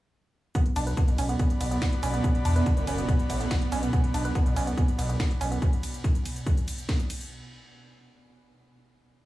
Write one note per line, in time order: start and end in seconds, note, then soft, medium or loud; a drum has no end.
0.55 5.66 B2 medium
0.55 5.66 B3 medium
0.55 0.61 B3 loud
0.55 5.62 F#4 medium
0.55 kick loud
0.55 closed hi-hat medium
0.55 shaker soft
0.66 closed hi-hat medium
0.71 5.62 D5 medium
0.71 5.62 B5 medium
0.76 0.93 B1 loud
0.76 0.80 D4 loud
0.76 open hi-hat loud
0.76 ride medium
0.76 shaker medium
0.87 0.91 B4 medium
0.87 closed hi-hat medium
0.87 shaker soft
0.97 1.04 B3 medium
0.97 kick loud
0.97 closed hi-hat medium
0.97 shaker soft
1.08 1.16 B1 medium
1.08 closed hi-hat medium
1.08 shaker soft
1.18 1.35 B1 loud
1.18 1.25 C#4 loud
1.18 open hi-hat loud
1.18 ride medium
1.18 shaker medium
1.29 1.35 B3 medium
1.29 closed hi-hat medium
1.29 shaker soft
1.39 1.49 B3 medium
1.39 kick loud
1.39 closed hi-hat medium
1.39 shaker soft
1.50 closed hi-hat medium
1.50 shaker soft
1.61 1.77 B1 loud
1.61 1.67 B3 medium
1.61 open hi-hat loud
1.61 ride medium
1.61 shaker medium
1.71 1.78 B3 medium
1.71 closed hi-hat medium
1.71 shaker soft
1.82 1.88 B3 medium
1.82 kick loud
1.82 snare loud
1.82 closed hi-hat medium
1.82 shaker soft
1.92 closed hi-hat medium
2.03 2.19 B1 medium
2.03 2.09 C#4 loud
2.03 open hi-hat loud
2.03 ride medium
2.03 shaker medium
2.14 2.17 B3 medium
2.14 closed hi-hat medium
2.14 shaker soft
2.24 2.30 B3 loud
2.24 kick loud
2.24 closed hi-hat medium
2.24 shaker soft
2.35 closed hi-hat medium
2.45 2.62 E2 loud
2.45 2.49 D4 loud
2.45 open hi-hat loud
2.45 ride medium
2.45 shaker medium
2.56 2.60 B4 medium
2.56 closed hi-hat medium
2.56 shaker soft
2.66 2.73 B3 medium
2.66 kick loud
2.66 closed hi-hat medium
2.66 shaker soft
2.77 2.85 F#1 loud
2.77 closed hi-hat medium
2.77 shaker soft
2.87 3.04 F#1 medium
2.87 2.94 C#4 loud
2.87 open hi-hat loud
2.87 ride medium
2.87 shaker medium
2.98 3.04 B3 medium
2.98 closed hi-hat medium
2.98 shaker soft
3.09 3.18 B3 medium
3.09 kick loud
3.09 closed hi-hat medium
3.09 shaker soft
3.19 closed hi-hat medium
3.19 shaker soft
3.30 3.46 A1 medium
3.30 3.36 B3 medium
3.30 open hi-hat loud
3.30 ride medium
3.30 shaker medium
3.41 3.47 B3 medium
3.41 closed hi-hat medium
3.41 shaker soft
3.51 3.57 B3 medium
3.51 kick loud
3.51 snare loud
3.51 closed hi-hat medium
3.51 shaker soft
3.62 closed hi-hat medium
3.72 3.88 B1 medium
3.72 3.78 C#4 loud
3.72 open hi-hat loud
3.72 ride medium
3.72 shaker medium
3.83 3.86 B3 medium
3.83 closed hi-hat medium
3.83 shaker soft
3.93 3.99 B3 loud
3.93 kick loud
3.93 closed hi-hat medium
3.93 shaker soft
4.04 closed hi-hat medium
4.14 4.31 B1 loud
4.14 4.18 D4 loud
4.14 open hi-hat loud
4.14 ride medium
4.14 shaker medium
4.25 4.29 B4 medium
4.25 closed hi-hat medium
4.25 shaker soft
4.35 4.42 B3 medium
4.35 kick loud
4.35 closed hi-hat medium
4.35 shaker soft
4.46 4.54 B1 medium
4.46 closed hi-hat medium
4.46 shaker soft
4.56 4.73 B1 loud
4.56 4.63 C#4 loud
4.56 open hi-hat loud
4.56 ride medium
4.56 shaker medium
4.67 4.73 B3 medium
4.67 closed hi-hat medium
4.67 shaker soft
4.78 4.87 B3 medium
4.78 kick loud
4.78 closed hi-hat medium
4.78 shaker soft
4.88 closed hi-hat medium
4.88 shaker soft
4.99 5.15 B1 loud
4.99 5.05 B3 medium
4.99 open hi-hat loud
4.99 ride medium
4.99 shaker medium
5.09 5.16 B3 medium
5.09 closed hi-hat medium
5.09 shaker soft
5.20 5.26 B3 medium
5.20 kick loud
5.20 snare loud
5.20 closed hi-hat medium
5.20 shaker soft
5.31 closed hi-hat medium
5.41 5.57 B1 medium
5.41 5.47 C#4 loud
5.41 open hi-hat loud
5.41 ride medium
5.41 shaker medium
5.52 5.55 B3 medium
5.52 closed hi-hat medium
5.52 shaker soft
5.62 kick loud
5.62 closed hi-hat medium
5.62 shaker soft
5.73 closed hi-hat medium
5.73 shaker soft
5.83 open hi-hat loud
5.83 ride medium
5.83 shaker medium
5.94 closed hi-hat medium
5.94 shaker soft
6.04 kick loud
6.04 closed hi-hat medium
6.04 shaker soft
6.15 closed hi-hat medium
6.15 shaker soft
6.26 open hi-hat loud
6.26 ride medium
6.26 shaker medium
6.36 closed hi-hat medium
6.36 shaker soft
6.47 kick loud
6.47 closed hi-hat medium
6.47 shaker soft
6.57 closed hi-hat medium
6.57 shaker soft
6.68 open hi-hat loud
6.68 ride medium
6.68 shaker medium
6.78 closed hi-hat medium
6.78 shaker soft
6.89 kick loud
6.89 snare loud
6.89 closed hi-hat medium
6.89 shaker soft
7.00 closed hi-hat medium
7.00 shaker soft
7.10 open hi-hat loud
7.10 ride medium
7.10 shaker medium
7.21 open hi-hat medium
7.21 shaker soft